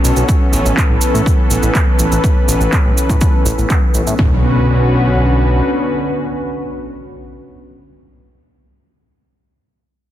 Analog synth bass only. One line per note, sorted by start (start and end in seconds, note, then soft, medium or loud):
0.04 0.12 B1 medium
0.17 0.24 B1 medium
0.53 0.61 A1 medium
0.66 0.73 A1 medium
0.90 0.97 A1 medium
1.14 1.22 A2 medium
1.51 1.58 A1 medium
1.63 1.70 A1 medium
1.99 2.07 A1 medium
2.12 2.19 A1 medium
2.48 2.56 A1 medium
2.61 2.68 A1 medium
2.85 2.92 A1 medium
3.09 3.17 A2 medium
3.46 3.53 A1 medium
3.58 3.65 A1 medium
3.94 4.02 A1 medium
4.07 4.14 A2 medium
4.19 5.61 B1 medium